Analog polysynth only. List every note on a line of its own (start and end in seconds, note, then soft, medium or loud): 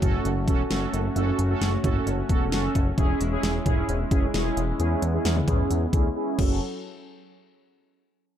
0.02 0.31 C#4 medium
0.02 0.31 F#4 medium
0.02 0.31 A4 loud
0.48 0.62 C#4 medium
0.48 0.62 F#4 medium
0.48 0.62 A4 loud
0.71 1.00 C#4 medium
0.71 1.00 F#4 medium
0.71 1.00 A4 loud
1.16 1.38 C#4 medium
1.16 1.38 F#4 medium
1.16 1.38 A4 loud
1.50 1.72 C#4 medium
1.50 1.72 F#4 medium
1.50 1.72 A4 loud
1.84 2.13 C#4 medium
1.84 2.13 F#4 medium
1.84 2.13 A4 loud
2.30 2.44 C#4 medium
2.30 2.44 F#4 medium
2.30 2.44 A4 loud
2.52 2.81 C#4 medium
2.52 2.81 F#4 medium
2.52 2.81 A4 loud
2.98 3.20 C#4 medium
2.98 3.20 E4 medium
2.98 3.20 G#4 loud
3.32 3.54 C#4 medium
3.32 3.54 E4 medium
3.32 3.54 G#4 loud
3.66 3.95 C#4 medium
3.66 3.95 E4 medium
3.66 3.95 G#4 loud
4.11 4.26 C#4 medium
4.11 4.26 E4 medium
4.11 4.26 G#4 loud
4.34 4.63 C#4 medium
4.34 4.63 E4 medium
4.34 4.63 G#4 loud
4.80 5.01 C#4 medium
4.80 5.01 E4 medium
4.80 5.01 G#4 loud
5.14 5.35 C#4 medium
5.14 5.35 E4 medium
5.14 5.35 G#4 loud
5.48 5.77 C#4 loud
5.48 5.77 E4 medium
5.48 5.77 G#4 loud
5.93 6.08 C#4 medium
5.93 6.08 E4 medium
5.93 6.08 G#4 loud
6.16 6.38 C#4 medium
6.16 6.39 E4 medium
6.16 6.39 G#4 loud
6.39 6.60 C#4 medium
6.39 6.60 F#4 medium
6.39 6.60 A4 loud